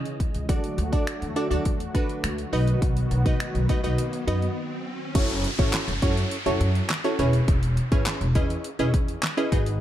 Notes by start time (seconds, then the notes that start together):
Already playing: C#3 E3 G#3 D#4 E4 G#4 C#5 D#5
0.05 closed hi-hat
0.20 C#2, kick, closed hi-hat
0.34 C#2, closed hi-hat
0.49 D2 D3 F#3 A3 D4 F#4 A4 D5, kick, closed hi-hat, riser
0.64 closed hi-hat
0.78 D2, closed hi-hat
0.92 D4 F#4 A4 D5, kick, closed hi-hat
1.07 finger snap, closed hi-hat
1.22 E2, closed hi-hat
1.36 D4 F#4 A4 D5, closed hi-hat
1.50 D2 D4 F#4 A4 D5, closed hi-hat
1.65 E2, kick, closed hi-hat
1.80 closed hi-hat
1.94 D4 F#4 A4 B4, kick, closed hi-hat
2.09 closed hi-hat
2.24 D2, finger snap, closed hi-hat
2.38 closed hi-hat
2.53 B1 D#3 F#3 B3 D#4 F#4 B4 D#5, open hi-hat
2.67 closed hi-hat
2.82 B1, kick, closed hi-hat
2.97 closed hi-hat
3.11 B1, closed hi-hat
3.26 D#4 F#4 B4 D#5, kick, closed hi-hat
3.40 finger snap, closed hi-hat
3.55 B1, closed hi-hat
3.69 D#4 F#4 B4 D#5, kick, closed hi-hat
3.83 B1 D#4 F#4 B4 D#5, closed hi-hat
3.98 closed hi-hat
4.13 closed hi-hat
4.27 F#2 D#4 F#4 B4 D#5, closed hi-hat
4.42 closed hi-hat
5.15 F#1 C#4 E4 F#4 A4 C#5, kick, closed hi-hat, crash, downlifter
5.30 closed hi-hat
5.44 closed hi-hat
5.58 G#1 C#4 E4 F#4 A4 C#5, kick, closed hi-hat
5.73 snare, clap, closed hi-hat
5.88 F#1, closed hi-hat
6.02 F#2 C#4 E4 F#4 A4 C#5, kick, closed hi-hat
6.17 closed hi-hat
6.31 closed hi-hat
6.46 F#1 C#4 E4 F#4 A4 C#5, closed hi-hat
6.60 F#2, closed hi-hat
6.75 closed hi-hat
6.90 snare, clap, closed hi-hat
7.04 C#4 E4 F#4 A4 C#5, closed hi-hat
7.19 E1 C#4 E4 G#4 B4 C#5, closed hi-hat
7.33 closed hi-hat
7.48 E1, kick, closed hi-hat
7.63 closed hi-hat
7.77 closed hi-hat
7.92 G#1 C#4 E4 G#4 B4 C#5, kick, closed hi-hat
8.06 snare, clap, closed hi-hat
8.21 E1, closed hi-hat
8.35 E2 C#4 E4 G#4 B4 D#5, kick, closed hi-hat
8.50 closed hi-hat
8.64 closed hi-hat
8.79 E1 C#4 E4 G#4 B4 D#5, closed hi-hat
8.94 E2, kick, closed hi-hat
9.08 closed hi-hat
9.23 snare, clap, closed hi-hat
9.37 C#4 E4 G#4 B4 D#5, closed hi-hat
9.52 G#1 D#4 F#4 G#4 B4 D#5, kick, closed hi-hat
9.66 closed hi-hat